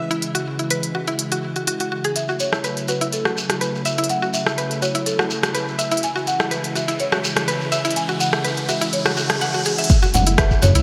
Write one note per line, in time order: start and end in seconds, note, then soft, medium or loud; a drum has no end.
0.00 2.12 C#3 medium
0.00 2.12 E3 medium
0.00 2.12 G#3 medium
0.00 2.12 E4 medium
0.11 0.17 E4 loud
0.11 closed hi-hat soft
0.22 closed hi-hat medium
0.35 0.45 F#4 loud
0.35 closed hi-hat soft
0.59 0.70 E4 medium
0.59 closed hi-hat soft
0.70 0.82 B4 loud
0.70 closed hi-hat medium
0.83 closed hi-hat soft
0.95 1.06 F#4 medium
1.07 1.14 E4 loud
1.07 closed hi-hat soft
1.19 closed hi-hat medium
1.32 1.42 F#4 medium
1.32 closed hi-hat soft
1.56 1.66 F#4 medium
1.56 closed hi-hat soft
1.67 1.74 F#4 loud
1.67 closed hi-hat medium
1.80 1.91 F#4 medium
1.80 closed hi-hat soft
1.92 2.03 F#4 medium
2.04 2.15 G#4 loud
2.04 closed hi-hat soft
2.16 5.99 C#3 medium
2.16 5.99 F#3 medium
2.16 5.99 A3 medium
2.16 9.86 E4 medium
2.16 2.41 E5 medium
2.16 closed hi-hat medium
2.16 riser medium
2.16 shekere soft
2.28 2.39 F#4 loud
2.28 shekere soft
2.40 2.90 C#5 medium
2.40 closed hi-hat soft
2.40 shekere medium
2.53 2.64 E4 medium
2.53 cross-stick medium
2.53 shekere soft
2.64 2.76 B4 loud
2.64 closed hi-hat medium
2.64 shekere medium
2.77 closed hi-hat soft
2.77 shekere soft
2.88 3.00 F#4 medium
2.88 3.11 B4 medium
2.88 closed hi-hat soft
2.88 shekere medium
3.01 3.07 E4 loud
3.01 closed hi-hat soft
3.01 shekere soft
3.13 4.13 A4 medium
3.13 closed hi-hat medium
3.13 shekere soft
3.25 3.36 F#4 loud
3.25 cross-stick medium
3.25 shekere soft
3.38 shekere medium
3.50 3.56 F#4 medium
3.50 cross-stick medium
3.50 closed hi-hat soft
3.50 shekere soft
3.61 3.73 B4 loud
3.61 closed hi-hat medium
3.61 shekere medium
3.75 shekere soft
3.85 3.97 E5 loud
3.85 closed hi-hat soft
3.85 shekere medium
3.98 4.04 E4 loud
3.98 closed hi-hat soft
3.98 shekere soft
4.04 closed hi-hat medium
4.09 4.35 F#5 loud
4.09 closed hi-hat medium
4.09 shekere soft
4.22 4.33 F#4 loud
4.22 shekere soft
4.34 4.79 E5 loud
4.34 closed hi-hat soft
4.34 shekere medium
4.46 4.57 E4 medium
4.46 cross-stick medium
4.46 shekere soft
4.58 4.70 B4 loud
4.58 closed hi-hat medium
4.58 shekere soft
4.71 closed hi-hat soft
4.71 shekere soft
4.82 4.94 F#4 medium
4.82 4.93 C#5 medium
4.82 closed hi-hat soft
4.82 shekere medium
4.95 5.01 E4 loud
4.95 closed hi-hat soft
4.95 shekere soft
5.06 5.99 A4 medium
5.06 closed hi-hat medium
5.06 shekere medium
5.19 5.29 F#4 loud
5.19 cross-stick medium
5.19 shekere soft
5.30 shekere medium
5.43 5.49 F#4 medium
5.43 cross-stick loud
5.43 closed hi-hat soft
5.43 shekere soft
5.55 5.66 B4 loud
5.55 closed hi-hat medium
5.55 shekere medium
5.68 shekere soft
5.79 5.90 E5 loud
5.79 closed hi-hat soft
5.79 shekere loud
5.91 5.98 E4 loud
5.91 closed hi-hat soft
5.91 shekere soft
5.97 closed hi-hat medium
6.03 9.86 C#3 medium
6.03 9.86 E3 medium
6.03 9.86 G#3 medium
6.03 6.26 G#5 loud
6.03 closed hi-hat medium
6.03 shekere medium
6.16 6.26 F#4 loud
6.16 shekere soft
6.27 6.77 F#5 loud
6.27 closed hi-hat soft
6.27 shekere medium
6.40 6.51 E4 medium
6.40 cross-stick loud
6.40 shekere soft
6.51 6.63 B4 loud
6.51 closed hi-hat medium
6.51 shekere medium
6.64 closed hi-hat soft
6.64 shekere soft
6.75 6.87 F#4 medium
6.75 6.98 E5 loud
6.75 closed hi-hat soft
6.75 shekere medium
6.88 6.94 E4 loud
6.88 closed hi-hat soft
6.88 shekere soft
6.99 8.00 C#5 loud
6.99 closed hi-hat medium
6.99 shekere medium
7.12 7.23 F#4 loud
7.12 cross-stick medium
7.12 shekere soft
7.24 shekere loud
7.36 7.43 F#4 medium
7.36 cross-stick loud
7.36 closed hi-hat soft
7.36 shekere soft
7.48 7.60 B4 loud
7.48 closed hi-hat medium
7.48 shekere medium
7.61 shekere soft
7.72 7.84 E5 loud
7.72 closed hi-hat soft
7.72 shekere medium
7.85 7.91 E4 loud
7.85 closed hi-hat soft
7.85 shekere soft
7.91 closed hi-hat medium
7.96 8.07 G#5 loud
7.96 closed hi-hat medium
7.96 shekere medium
8.09 8.19 F#4 loud
8.09 shekere soft
8.20 8.70 F#5 loud
8.20 closed hi-hat soft
8.20 shekere loud
8.33 8.44 E4 medium
8.33 cross-stick loud
8.33 shekere soft
8.44 8.56 B4 loud
8.44 closed hi-hat medium
8.44 shekere medium
8.57 closed hi-hat soft
8.57 shekere soft
8.69 8.80 F#4 medium
8.69 8.94 E5 loud
8.69 closed hi-hat soft
8.69 shekere medium
8.81 8.88 E4 loud
8.81 closed hi-hat soft
8.81 shekere soft
8.93 9.86 C#5 medium
8.93 closed hi-hat medium
8.93 swell medium
8.93 shekere soft
9.06 9.16 F#4 loud
9.06 cross-stick medium
9.06 shekere soft
9.17 9.30 F#4 medium
9.17 shekere loud
9.30 9.40 G#4 medium
9.30 cross-stick loud
9.30 closed hi-hat soft
9.41 9.53 F#5 loud
9.41 closed hi-hat medium
9.41 shekere medium
9.54 9.65 F#4 medium
9.54 shekere soft
9.65 9.73 G#4 medium
9.65 closed hi-hat soft
9.65 shekere medium
9.78 9.89 E5 medium
9.78 closed hi-hat soft
9.78 shekere soft
9.84 closed hi-hat medium
9.89 10.82 C#3 medium
9.89 10.82 F#3 medium
9.89 10.82 A3 medium
9.89 10.82 E4 medium
9.89 kick loud
9.89 closed hi-hat soft
9.89 shekere medium
10.03 10.13 F#4 loud
10.03 muted conga medium
10.03 shekere soft
10.14 10.57 F#1 loud
10.14 10.39 F#5 loud
10.14 open hi-hat medium
10.14 low conga loud
10.14 shekere medium
10.26 10.38 E4 medium
10.26 closed hi-hat medium
10.26 shekere soft
10.38 10.50 B4 loud
10.38 10.49 E5 loud
10.38 kick loud
10.38 cross-stick loud
10.38 closed hi-hat soft
10.38 muted conga soft
10.38 shekere medium
10.51 kick medium
10.51 shekere soft
10.62 10.72 F#2 loud
10.62 10.74 F#4 medium
10.62 10.82 C#5 loud
10.62 open hi-hat medium
10.62 high conga loud
10.62 shekere medium
10.75 10.82 C#2 loud
10.75 10.82 E4 loud
10.75 closed hi-hat medium
10.75 muted conga soft
10.75 shekere soft